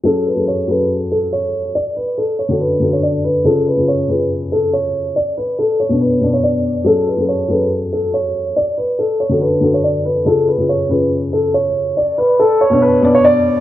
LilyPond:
<<
  \new Staff \with { instrumentName = "Grand piano" } { \time 4/4 \key fis \minor \tempo 4 = 141 a'8 b'8 cis''8 b'8 r8 a'8 cis''4 | d''8 b'8 a'8 cis''8 b'8. cis''16 d''8 b'8 | a'8 b'8 cis''8 b'8 r8 a'8 cis''4 | d''8 b'8 a'8 cis''8 b'8. cis''16 d''4 |
a'8 b'8 cis''8 b'8 r8 a'8 cis''4 | d''8 b'8 a'8 cis''8 b'8. cis''16 d''8 b'8 | a'8 b'8 cis''8 b'8 r8 a'8 cis''4 | d''8 b'8 a'8 cis''8 b'8. cis''16 d''4 | }
  \new Staff \with { instrumentName = "Felt piano" } { \time 4/4 \key fis \minor <fis cis' gis' a'>8. <fis cis' gis' a'>8. <fis cis' gis' a'>4.~ <fis cis' gis' a'>16 r8. | r4. r16 <d d' fis' a'>8. <d d' fis' a'>4~ <d d' fis' a'>16 r16 | <cis cis' eis' gis'>8. <cis cis' eis' gis'>8. <cis cis' eis' gis'>4.~ <cis cis' eis' gis'>16 r8. | r4. r16 <b, b d' cis''>8. <b, b d' d''>4~ <b, b d' d''>16 r16 |
<fis cis' gis' a'>8. <fis cis' gis' a'>8. <fis cis' gis' a'>4.~ <fis cis' gis' a'>16 r8. | r4. r16 <d d' fis' a'>8. <d d' fis' a'>4~ <d d' fis' a'>16 r16 | <cis cis' eis' gis'>8. <cis cis' eis' gis'>8. <cis cis' eis' gis'>4.~ <cis cis' eis' gis'>16 r8. | r4. r16 <b, b d' cis''>8. <b, b d' d''>4~ <b, b d' d''>16 r16 | }
>>